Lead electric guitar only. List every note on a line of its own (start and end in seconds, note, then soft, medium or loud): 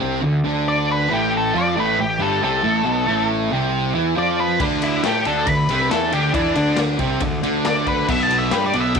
0.68 0.89 D5 loud
0.92 1.11 B4 medium
1.13 1.33 G4 medium
1.37 1.56 A4 medium
1.58 1.77 D5 loud
1.80 1.99 B4 medium
2.00 2.20 G4 medium
2.22 2.42 A4 medium
2.44 3.28 A4 loud
4.18 4.38 D5 medium
4.40 4.60 B4 medium
4.84 5.04 E4 medium
5.05 5.26 G4 medium
5.27 5.49 A4 medium
5.49 5.90 B4 medium
5.91 6.12 A4 medium
6.13 6.34 G4 medium
6.35 6.77 D4 loud
7.66 7.87 D5 loud
7.88 8.09 B4 medium
8.09 8.23 E5 loud
8.23 8.37 A5 loud
8.38 8.52 E5 loud
8.52 8.66 B4 medium
8.66 8.80 D5 medium
8.80 8.98 E5 loud